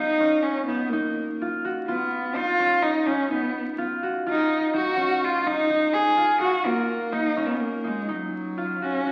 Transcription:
Already playing: harp C#4 D#4 F4, cello D#4
0.20 harp C#4
0.43 cello C#4
0.66 cello B3, harp D#4
0.89 cello A#3
0.93 harp D#4
1.42 harp F4
1.65 harp F#4
1.87 cello B3, harp F4
2.35 harp D#4, cello F4
2.59 harp C#4
2.83 cello D#4
3.06 cello C#4, harp D#4
3.31 cello B3, harp D#4
3.78 harp F4
4.03 harp F#4
4.26 cello D#4, harp F4
4.74 harp D#4, cello F#4
4.97 harp C#4
5.24 cello F4
5.46 harp D#4, cello D#4
5.70 harp D#4
5.94 cello G#4
6.17 harp F4
6.40 harp F#4, cello F#4
6.65 cello A#3, harp F4
7.12 harp D#4, cello D#4
7.37 harp C#4
7.46 cello B3
7.61 cello A#3
7.84 cello G#3, harp D#4
8.09 cello F#3, harp D#4
8.58 harp F4
8.82 cello C#4, harp F#4
9.06 harp F#4

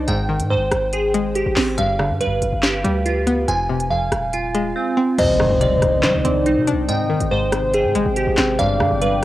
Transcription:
0.08 808-style bass G#1, synth pluck G#2, synth keys G5, closed hi-hat
0.29 synth pluck D#3
0.40 808-style bass G#2, closed hi-hat
0.50 synth pluck G#2, synth keys C5
0.56 808-style bass G#1
0.71 808-style bass G#1, cross-stick, closed hi-hat
0.93 synth keys G#4, closed hi-hat
1.14 synth pluck G#3, closed hi-hat
1.35 synth keys G4, closed hi-hat
1.46 808-style bass G#1
1.56 808-style bass G#1, synth pluck C4, snare, clap, open hi-hat
1.78 808-style bass G1, synth pluck G2, synth keys F5, closed hi-hat
1.99 synth pluck D3, cross-stick
2.10 808-style bass G2
2.21 synth pluck G2, synth keys B4, closed hi-hat
2.26 808-style bass G1
2.42 808-style bass G1, closed hi-hat
2.52 808-style bass G1
2.63 synth keys G4, snare, clap
2.84 808-style bass D2, synth pluck G3, closed hi-hat
3.06 synth keys F4, closed hi-hat
3.27 synth pluck B3, closed hi-hat
3.48 808-style bass F1, synth pluck F2, synth keys G#5, closed hi-hat
3.69 synth pluck C3
3.80 closed hi-hat
3.90 synth pluck F2, synth keys F5
4.12 808-style bass D#1, cross-stick, closed hi-hat
4.33 synth keys F4, closed hi-hat
4.55 synth pluck G#3, closed hi-hat
4.76 synth keys C4
4.97 synth pluck C4
5.18 808-style bass C2, synth pluck C3, ambient pad D#3 C4 D#4, soft synth lead C5, synth keys D#5, closed hi-hat, crash, impact
5.40 808-style bass G2, synth pluck D#3, cross-stick
5.50 808-style bass C2
5.61 synth pluck C3, synth keys D5, closed hi-hat
5.72 808-style bass D2
5.82 808-style bass C2, cross-stick, closed hi-hat
6.03 808-style bass G3, synth keys C5, snare, clap
6.14 808-style bass C2
6.25 808-style bass C2, synth pluck C4, soft synth lead D5, closed hi-hat
6.46 synth keys D#4, closed hi-hat
6.57 808-style bass C3
6.67 synth pluck D4, closed hi-hat
6.73 808-style bass C2
6.88 synth pluck G#2, ambient pad C3 G#3 G5, soft synth lead D#5, synth keys G5, closed hi-hat
7.10 synth pluck D#3
7.20 808-style bass G#1, closed hi-hat
7.31 synth pluck G#2, synth keys C5
7.52 soft synth lead C5, cross-stick, closed hi-hat
7.74 synth keys G#4, closed hi-hat
7.84 808-style bass G#2
7.95 808-style bass G#1, synth pluck G#3, closed hi-hat
8.06 808-style bass G#1
8.16 synth keys G4, closed hi-hat
8.27 808-style bass G#1
8.37 808-style bass G#1, synth pluck C4, snare, clap
8.59 808-style bass G1, synth pluck G2, ambient pad F3 B3, soft synth lead D5, synth keys F5, closed hi-hat
8.80 808-style bass G2, synth pluck D3, cross-stick
8.91 808-style bass G1
9.01 synth pluck G2, synth keys B4, closed hi-hat

